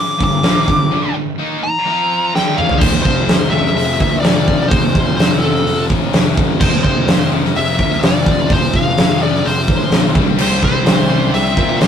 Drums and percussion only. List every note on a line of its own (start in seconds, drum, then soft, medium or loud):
0.20 kick medium
0.20 open hi-hat medium
0.43 snare loud
0.43 open hi-hat medium
0.68 kick loud
0.68 open hi-hat medium
2.36 snare medium
2.58 mid tom medium
2.69 floor tom medium
2.81 kick loud
2.81 crash loud
3.05 kick medium
3.29 snare loud
3.29 open hi-hat medium
3.66 snare soft
3.77 open hi-hat medium
4.00 kick medium
4.24 snare loud
4.24 open hi-hat medium
4.48 kick medium
4.71 kick loud
4.71 open hi-hat medium
4.95 kick medium
5.19 snare loud
5.19 open hi-hat medium
5.56 snare soft
5.67 open hi-hat medium
5.90 kick medium
6.13 snare loud
6.13 open hi-hat medium
6.37 kick loud
6.61 kick loud
6.61 crash loud
6.85 kick medium
7.08 snare loud
7.08 open hi-hat medium
7.45 snare soft
7.56 open hi-hat medium
7.79 kick medium
7.92 snare soft
8.03 snare loud
8.03 open hi-hat medium
8.26 kick loud
8.50 kick loud
8.50 open hi-hat medium
8.74 kick medium
8.98 snare loud
8.98 open hi-hat medium
9.35 snare soft
9.45 open hi-hat medium
9.68 kick loud
9.92 snare loud
9.92 open hi-hat medium
10.15 kick loud
10.39 crash loud
10.63 kick medium
10.86 snare loud
10.86 open hi-hat medium
11.34 open hi-hat medium
11.57 kick loud
11.81 snare loud
11.81 open hi-hat medium